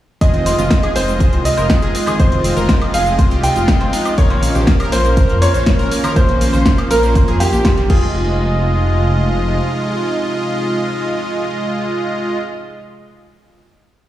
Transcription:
0.21 detuned saw bass F1, analog synth pad F3 G#3 D#4 F4, supersaw synth G#3 F4 D#5, synth texture G#3 F5, synth pluck G#4, synth bell D#5, grand piano D#5, kick, closed hi-hat, cabasa, high woodblock
0.33 synth pluck C4, closed hi-hat, low conga
0.46 synth pluck C4, open hi-hat, cabasa, high woodblock
0.58 detuned saw bass F1, supersaw synth G#3 F4 D#5, synth pluck F4, closed hi-hat, low conga, cabasa
0.71 synth pluck C4, kick, snare, closed hi-hat, cabasa, high woodblock
0.83 synth pluck G#4, closed hi-hat, high woodblock
0.96 detuned saw bass F1, synth pluck C4, grand piano C5, synth bell C5, open hi-hat, cabasa, high woodblock
1.08 supersaw synth G#3 F4 D#5, synth pluck C4, closed hi-hat, cabasa
1.20 synth pluck G#4, kick, closed hi-hat, cabasa
1.33 detuned saw bass C2, synth pluck C4, closed hi-hat, high woodblock
1.45 synth pluck C4, synth bell D#5, grand piano D#5, open hi-hat, cabasa
1.57 detuned saw bass F1, synth pluck A#4, closed hi-hat, cabasa, high woodblock
1.70 synth pluck C4, kick, snare, closed hi-hat, cabasa
1.82 detuned saw bass F1, synth pluck G#4, closed hi-hat, high woodblock
1.95 synth pluck C4, open hi-hat, cabasa
2.06 synth pluck G#4, closed hi-hat, low conga, cabasa, high woodblock
2.19 detuned saw bass F1, supersaw synth G#3 F4 D#5, synth pluck C4, grand piano C5, synth bell C5, kick, closed hi-hat, cabasa
2.32 synth pluck C4, closed hi-hat, low conga
2.44 synth pluck C4, open hi-hat, cabasa, high woodblock
2.57 detuned saw bass F1, supersaw synth G#3 F4 D#5, synth pluck A#4, closed hi-hat, low conga, cabasa
2.69 synth pluck C4, kick, snare, closed hi-hat, cabasa, high woodblock
2.82 synth pluck C4, closed hi-hat, high woodblock
2.94 detuned saw bass F1, synth pluck G#4, grand piano F5, synth bell F5, open hi-hat, cabasa, high woodblock
3.06 supersaw synth G#3 F4 D#5, synth pluck C4, closed hi-hat, cabasa
3.19 synth pluck C4, kick, closed hi-hat, cabasa, high woodblock
3.31 detuned saw bass C2, synth pluck G4, closed hi-hat
3.43 synth pluck C4, grand piano G5, synth bell G5, open hi-hat, cabasa
3.56 detuned saw bass F1, synth pluck F4, closed hi-hat, cabasa, high woodblock
3.68 synth pluck C4, kick, snare, closed hi-hat, cabasa
3.81 detuned saw bass F1, synth pluck C4, closed hi-hat, high woodblock
3.93 synth pluck D#4, open hi-hat, cabasa
4.05 synth pluck C4, closed hi-hat, cabasa, high woodblock
4.18 detuned saw bass A#1, supersaw synth A#3 C#4 C#5, analog synth pad A#3 C#4, synth pluck A#4, grand piano C#5, synth bell C#5, kick, closed hi-hat, cabasa
4.30 synth pluck A#3, closed hi-hat, low conga, high woodblock
4.43 synth pluck A#3, open hi-hat, cabasa
4.55 detuned saw bass A#1, supersaw synth A#3 C#4 C5, synth pluck G4, closed hi-hat, low conga, cabasa
4.67 synth pluck A#3, kick, snare, closed hi-hat, cabasa, high woodblock
4.80 synth pluck A#4, closed hi-hat, high woodblock
4.92 detuned saw bass A#1, synth pluck A#3, grand piano C5, synth bell C5, open hi-hat, cabasa, high woodblock
5.05 synth pluck A#3, supersaw synth A#3 C#4 A#4, closed hi-hat, cabasa
5.17 synth pluck A#4, kick, closed hi-hat, cabasa, high woodblock
5.29 detuned saw bass F2, synth pluck A#3, closed hi-hat
5.42 synth pluck A#3, grand piano C#5, synth bell C#5, open hi-hat, cabasa, high woodblock
5.54 detuned saw bass A#1, synth pluck C5, closed hi-hat, cabasa
5.66 synth pluck A#3, kick, snare, closed hi-hat, cabasa
5.79 detuned saw bass A#1, synth pluck A#4, closed hi-hat, high woodblock
5.91 synth pluck A#3, open hi-hat, cabasa
6.04 synth pluck A#4, closed hi-hat, low conga, cabasa, high woodblock
6.16 detuned saw bass A#1, supersaw synth A#3 C#4 C5, synth pluck A#3, grand piano C5, synth bell C5, kick, closed hi-hat, cabasa
6.28 synth pluck A#3, closed hi-hat, low conga, high woodblock
6.41 synth pluck A#3, open hi-hat, cabasa
6.53 detuned saw bass A#1, supersaw synth A#3 C#4 C5, synth pluck C5, low conga, cabasa, high woodblock
6.66 synth pluck A#3, kick, snare, closed hi-hat, cabasa
6.78 synth pluck A#3, closed hi-hat, high woodblock
6.91 detuned saw bass A#1, grand piano A#4, synth pluck A#4, synth bell A#4, open hi-hat, cabasa, high woodblock
7.03 supersaw synth A#3 C#4 C5, synth pluck A#3, closed hi-hat, cabasa
7.15 synth pluck A#3, kick, closed hi-hat, cabasa, high woodblock
7.28 detuned saw bass F2, synth pluck G#4, closed hi-hat
7.40 supersaw synth A#3 C#4 C5, synth pluck A#3, grand piano G4, synth bell G4, open hi-hat, high conga, cabasa, high woodblock
7.53 detuned saw bass A#1, synth pluck G4, closed hi-hat, cabasa
7.65 synth pluck A#3, kick, snare, closed hi-hat, cabasa, high woodblock
7.77 detuned saw bass A#1, synth pluck A#3, closed hi-hat
7.90 detuned saw bass F1, analog synth pad C3 F3 G#3 D#4 F4, supersaw synth G#3 F4 D#5, synth pluck F4, grand piano G#4, synth bell G#4, kick, crash
8.02 high woodblock

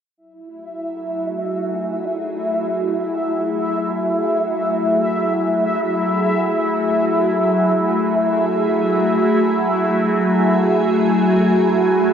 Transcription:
0.17 ambient pad F#3, synth texture E4 E5
0.32 ambient pad A3 E5
0.38 ambient pad F#4
0.81 ambient pad G#4
10.17 synth texture G#5

